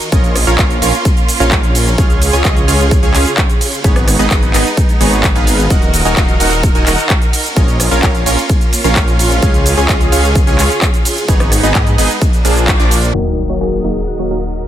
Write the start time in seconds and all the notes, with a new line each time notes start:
Already playing: D#3 F#4 A#4
0.01 closed hi-hat, shaker
0.12 A#1 A#3 C#4 F4 A#4 C#5 D#5, kick, closed hi-hat, shaker
0.24 closed hi-hat, shaker
0.36 cross-stick, open hi-hat, ride, shaker
0.47 A#1 C#4 F4 A#4 C#5 F5, closed hi-hat, shaker
0.59 A#1 F4 A#4 F5, kick, clap, closed hi-hat, shaker
0.70 closed hi-hat, shaker
0.82 A#1 C#4 F4 A#4 C#5 F5, open hi-hat, ride, shaker
0.94 closed hi-hat, shaker
1.05 kick, closed hi-hat, shaker
1.17 closed hi-hat, shaker
1.28 open hi-hat, ride, shaker
1.40 A#1 C#4 F4 A#4 C#5 F5, closed hi-hat, shaker
1.52 kick, clap, closed hi-hat, shaker
1.63 closed hi-hat, shaker
1.75 open hi-hat, ride, shaker
1.87 closed hi-hat, shaker
1.98 C#2 C#3 C#4 F4 G#4 C#5 F5, kick, closed hi-hat, shaker
2.10 closed hi-hat, shaker
2.22 open hi-hat, ride, shaker
2.33 C#2 C#4 F4 G#4 C#5 G#5, closed hi-hat, shaker
2.45 C#2 C#4 F4 G#4 D#5, kick, clap, closed hi-hat, shaker
2.56 closed hi-hat, shaker
2.68 C#2 C#4 F4 G#4 C#5 F5, open hi-hat, ride, shaker
2.80 closed hi-hat, shaker
2.91 kick, closed hi-hat, shaker
3.03 C#2 C#4 F4 G#4 C#5 G#5, closed hi-hat, shaker
3.14 C#2 C#4 F4 G#4 C#5 F5, clap, open hi-hat, ride, shaker
3.26 closed hi-hat, shaker
3.38 kick, clap, closed hi-hat, shaker
3.49 closed hi-hat, shaker
3.61 open hi-hat, ride, shaker
3.73 closed hi-hat, shaker
3.84 G#1 G#3 B3 D#4 G#4 B4 C#5, kick, closed hi-hat, shaker
3.96 cross-stick, closed hi-hat, shaker
4.08 cross-stick, open hi-hat, ride, shaker
4.19 G#1 B3 D#4 G#4 B4 D#5, closed hi-hat, shaker
4.31 G#1 B3 D#4 G#4 B4 D#5, kick, clap, closed hi-hat, shaker
4.42 closed hi-hat, shaker
4.54 G#1 B3 D#4 G#4 B4 D#5, clap, open hi-hat, ride, shaker
4.66 closed hi-hat, shaker
4.77 kick, closed hi-hat, shaker
4.89 closed hi-hat, shaker
5.01 G#1 B3 D#4 G#4 B4 C#5, open hi-hat, ride, shaker
5.12 closed hi-hat, shaker
5.24 kick, clap, closed hi-hat, shaker
5.35 G#1 B3 D#4 G#4 B4 F5, closed hi-hat, shaker
5.47 open hi-hat, ride, shaker
5.59 closed hi-hat, shaker
5.70 D#1 D#3 D#4 F#4 A#4 D#5 F#5, kick, closed hi-hat, shaker
5.82 closed hi-hat, shaker
5.94 open hi-hat, ride, shaker
6.05 D#1 D#4 F#4 A#4 D#5 G#5, closed hi-hat, shaker
6.17 D#1 D#4 F#4 D#5 F5, kick, clap, closed hi-hat, shaker
6.28 closed hi-hat, shaker
6.40 D#1 D#4 F#4 A#4 D#5 F#5, open hi-hat, ride, shaker
6.52 closed hi-hat, shaker
6.63 kick, closed hi-hat, shaker
6.75 D#1 D#4 F#4 A#4 D#5 G#5, closed hi-hat, shaker
6.86 D#1 D#4 F#4 A#4 D#5 F#5, clap, open hi-hat, ride, shaker
6.98 closed hi-hat, shaker
7.10 kick, clap, closed hi-hat, shaker
7.22 closed hi-hat, shaker
7.33 open hi-hat, ride, shaker
7.45 closed hi-hat, shaker
7.56 A#1 A#3 C#4 F4 A#4 C#5 D#5, kick, closed hi-hat, shaker
7.68 closed hi-hat, shaker
7.80 cross-stick, open hi-hat, ride, shaker
7.91 A#1 C#4 F4 A#4 C#5 F5, closed hi-hat, shaker
8.03 A#1 C#4 F4 C#5 F5, kick, clap, closed hi-hat, shaker
8.15 closed hi-hat, shaker
8.26 A#1 C#4 F4 A#4 C#5 F5, open hi-hat, ride, shaker
8.38 closed hi-hat, shaker
8.49 kick, closed hi-hat, shaker
8.61 closed hi-hat, shaker
8.73 open hi-hat, ride, shaker
8.84 A#1 C#4 F4 A#4 C#5 F5, closed hi-hat, shaker
8.96 kick, clap, closed hi-hat, shaker
9.08 closed hi-hat, shaker
9.19 open hi-hat, ride, shaker
9.31 closed hi-hat, shaker
9.42 C#2 C#3 C#4 F4 G#4 C#5 F5, kick, closed hi-hat, shaker
9.54 closed hi-hat, shaker
9.66 open hi-hat, ride, shaker
9.77 C#2 C#4 F4 G#4 C#5 G#5, closed hi-hat, shaker
9.89 C#2 C#4 F4 G#4 C#5 D#5, kick, clap, closed hi-hat, shaker
10.01 closed hi-hat, shaker
10.12 C#2 C#4 F4 G#4 C#5 F5, open hi-hat, ride, shaker
10.24 closed hi-hat, shaker
10.35 kick, closed hi-hat, shaker
10.47 C#2 C#4 F4 G#4 C#5 G#5, closed hi-hat, shaker
10.59 C#2 C#4 F4 G#4 C#5 F5, clap, open hi-hat, ride, shaker
10.70 closed hi-hat, shaker
10.82 kick, clap, closed hi-hat, shaker
10.94 closed hi-hat, shaker
11.05 open hi-hat, ride, shaker
11.17 closed hi-hat, shaker
11.28 G#1 G#3 B3 D#4 G#4 B4 C#5, kick, closed hi-hat, shaker
11.40 cross-stick, closed hi-hat, shaker
11.52 cross-stick, open hi-hat, ride, shaker
11.63 G#1 B3 D#4 G#4 B4 D#5, closed hi-hat, shaker
11.75 G#2 B3 D#4 G#4 B4 D#5, kick, clap, closed hi-hat, shaker
11.87 closed hi-hat, shaker
11.98 G#1 B3 D#4 G#4 B4 D#5, open hi-hat, ride, shaker
12.10 closed hi-hat, shaker
12.22 F3 A#3 D4, kick, closed hi-hat, shaker
12.33 closed hi-hat, shaker
12.45 A#1 F3 A#3 D4 F4 G#4, open hi-hat, ride, shaker
12.56 closed hi-hat, shaker
12.68 kick, clap, closed hi-hat, shaker
12.80 A#1 F3 A#3 D4 F4 D5, closed hi-hat, shaker
12.91 open hi-hat, ride, shaker
13.03 closed hi-hat, shaker
13.13 D#1 D#3 F#3 A#3 D#4 F#4 A#4 D#5 F#5 D#6, crash, sub drop
13.49 F#3 A#3 D#4 F#4 C#5
13.61 F#3 A#3 D#4 F#4 G#4 A#4
13.84 F#3 A#3 D#4 F#4 G#4 A#4
14.08 F#4
14.19 F#3 A#3 D#4 F#4 C#5
14.31 F#3 A#3 D#4 F#4 A#4